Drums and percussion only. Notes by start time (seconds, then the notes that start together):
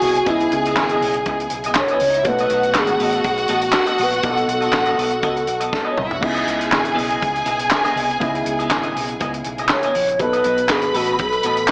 0.01 open hi-hat
0.15 closed hi-hat
0.26 kick, closed hi-hat
0.40 closed hi-hat
0.52 closed hi-hat
0.65 closed hi-hat
0.76 kick, snare, clap
0.89 closed hi-hat
1.02 open hi-hat
1.14 closed hi-hat
1.26 kick, closed hi-hat
1.40 closed hi-hat
1.50 closed hi-hat
1.64 closed hi-hat
1.75 kick, snare, clap
1.88 closed hi-hat
2.00 open hi-hat
2.14 closed hi-hat
2.25 kick, closed hi-hat
2.38 closed hi-hat
2.50 closed hi-hat
2.63 closed hi-hat
2.74 kick, snare, clap
2.87 closed hi-hat
3.00 open hi-hat
3.12 closed hi-hat
3.24 kick, closed hi-hat
3.37 closed hi-hat
3.48 closed hi-hat
3.61 closed hi-hat
3.72 kick, snare, clap
3.86 closed hi-hat
3.98 open hi-hat
4.12 closed hi-hat
4.23 kick, closed hi-hat
4.37 closed hi-hat
4.49 closed hi-hat
4.62 closed hi-hat
4.73 kick, snare, clap
4.85 closed hi-hat
4.99 open hi-hat
5.10 closed hi-hat
5.23 kick, closed hi-hat
5.37 closed hi-hat
5.47 closed hi-hat
5.61 closed hi-hat
5.73 kick, snare
5.98 mid tom
6.11 floor tom
6.23 kick, crash
6.36 closed hi-hat
6.48 closed hi-hat
6.61 closed hi-hat
6.72 kick, snare, clap
6.85 closed hi-hat
6.98 open hi-hat
7.10 closed hi-hat
7.22 kick, closed hi-hat
7.35 closed hi-hat
7.46 closed hi-hat
7.59 closed hi-hat
7.70 kick, snare, clap
7.85 snare, closed hi-hat
7.97 open hi-hat
8.11 closed hi-hat
8.21 kick, closed hi-hat
8.35 closed hi-hat
8.46 closed hi-hat
8.60 closed hi-hat
8.71 kick, snare, clap
8.83 closed hi-hat
8.96 open hi-hat
9.09 closed hi-hat
9.20 kick, closed hi-hat
9.34 closed hi-hat
9.44 closed hi-hat
9.58 closed hi-hat
9.69 kick, snare, clap
9.83 closed hi-hat
9.95 open hi-hat
10.08 closed hi-hat
10.19 kick, closed hi-hat
10.33 closed hi-hat
10.44 closed hi-hat
10.58 closed hi-hat
10.69 kick, snare, clap
10.82 closed hi-hat
10.94 open hi-hat
11.07 closed hi-hat
11.19 kick, closed hi-hat
11.32 closed hi-hat
11.43 closed hi-hat
11.57 closed hi-hat
11.68 clap